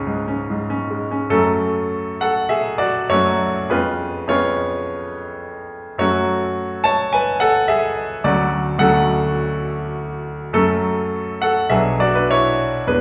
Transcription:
0.00 1.37 C#2 medium
0.00 0.07 G#2 medium
0.00 0.90 G#3 medium
0.00 0.28 C#4 medium
0.00 0.98 F4 medium
0.00 1.02 F5 medium
0.07 0.41 G#2 medium
0.28 0.62 C#4 medium
0.50 0.84 G#2 medium
0.70 1.05 C#4 medium
0.90 1.25 G#3 medium
1.11 1.31 C#4 medium
1.30 3.05 F#2 medium
1.30 3.05 F#3 soft
1.30 3.06 A3 soft
1.30 2.17 C#4 medium
1.30 2.20 A4 medium
2.21 2.49 A4 medium
2.21 2.51 F#5 medium
2.49 2.78 G#4 medium
2.49 2.80 E5 medium
2.78 3.08 F#4 medium
2.78 3.10 D5 medium
3.09 3.68 F#2 medium
3.09 3.69 F#3 soft
3.09 3.69 A3 soft
3.09 3.69 C#4 soft
3.09 3.67 F#4 medium
3.09 3.70 C#5 medium
3.70 4.26 F2 medium
3.70 4.27 G#3 soft
3.70 4.27 B3 soft
3.70 4.27 C#4 soft
3.70 4.25 F4 medium
3.70 4.29 B4 medium
4.27 5.96 F2 medium
4.27 5.97 G#3 soft
4.27 5.97 B3 soft
4.27 5.97 C#4 soft
4.27 5.69 F4 medium
4.27 5.72 C#5 medium
5.98 8.20 F#2 medium
5.98 8.20 F#3 soft
5.98 8.21 A3 soft
5.98 8.21 C#4 soft
5.98 6.82 F#4 medium
5.98 6.84 C#5 medium
6.84 7.12 C#5 medium
6.84 7.14 A5 loud
7.13 7.40 B4 medium
7.13 7.42 G#5 loud
7.40 7.67 A4 medium
7.40 7.69 F#5 loud
7.68 8.21 G#4 medium
7.68 8.24 E5 loud
8.24 8.77 D2 medium
8.24 8.77 F#3 soft
8.24 8.78 A3 soft
8.24 8.79 C#4 soft
8.24 8.79 F#4 medium
8.24 8.82 D5 medium
8.79 10.49 D2 medium
8.79 10.50 F#3 medium
8.79 10.50 A3 soft
8.79 10.51 C#4 soft
8.79 10.22 A4 medium
8.79 10.25 F#5 loud
10.53 11.68 F#2 medium
10.53 11.68 F#3 soft
10.53 11.68 A3 soft
10.53 11.39 C#4 medium
10.53 11.41 A4 medium
11.42 11.70 A4 medium
11.42 11.72 F#5 medium
11.69 12.85 B1 medium
11.69 12.85 F#3 soft
11.69 12.86 B3 soft
11.69 12.15 D4 soft
11.69 11.99 G#4 medium
11.69 12.01 E5 medium
12.00 12.16 F#4 medium
12.00 12.16 D5 medium
12.15 12.31 D4 medium
12.15 12.31 B4 medium
12.31 12.86 E4 medium
12.31 12.90 C#5 medium
12.87 13.01 E2 soft
12.87 13.01 G#3 soft
12.87 13.01 B3 soft
12.87 13.01 D4 medium
12.87 13.01 B4 medium

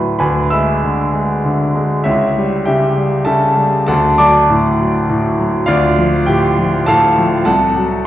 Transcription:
0.00 0.17 D2 medium
0.00 0.23 A2 medium
0.00 0.23 F#3 medium
0.00 0.23 F#4 medium
0.00 0.23 A4 medium
0.00 0.16 B4 medium
0.00 0.23 D5 medium
0.00 0.23 F#5 medium
0.00 0.23 A5 medium
0.00 0.17 B5 medium
0.19 2.02 D2 medium
0.19 0.50 B4 medium
0.19 0.50 G#5 medium
0.19 0.51 B5 medium
0.50 1.02 G#3 medium
0.50 1.71 E5 medium
0.50 1.71 B5 medium
0.50 1.74 E6 medium
0.84 1.32 D3 soft
1.14 1.63 G#3 medium
1.45 1.94 D3 medium
1.75 2.06 G#3 medium
2.04 3.84 C#2 medium
2.04 2.62 E4 medium
2.04 2.62 C#5 medium
2.04 2.65 E5 medium
2.37 2.85 G3 medium
2.65 3.15 C#3 medium
2.65 3.23 G4 medium
2.65 3.22 E5 medium
2.65 3.26 G5 medium
2.97 3.45 G3 medium
3.25 3.75 C#3 medium
3.25 3.84 A4 medium
3.25 3.84 E5 medium
3.25 3.85 A5 medium
3.56 3.88 G3 medium
3.87 5.64 D2 medium
3.87 4.17 A4 medium
3.87 4.17 F#5 medium
3.87 4.18 A5 medium
4.18 4.67 F#3 medium
4.18 5.34 D5 medium
4.18 5.34 A5 medium
4.18 5.38 D6 medium
4.50 4.97 A2 medium
4.79 5.27 F#3 medium
5.09 5.57 A2 medium
5.39 5.68 F#3 medium
5.66 7.43 D2 medium
5.66 6.23 F4 medium
5.66 6.23 D5 medium
5.66 6.26 F5 medium
5.98 6.46 F3 medium
6.26 6.76 A2 medium
6.26 6.84 G4 medium
6.26 6.87 G5 medium
6.58 7.06 F3 medium
6.86 7.35 A2 medium
6.86 7.43 A4 medium
6.86 7.43 F5 medium
6.86 7.44 A5 loud
7.18 7.47 F3 medium
7.45 8.07 C2 medium
7.45 8.02 A4 medium
7.45 8.02 F#5 medium
7.45 8.05 A5 medium
7.76 8.07 F#3 medium

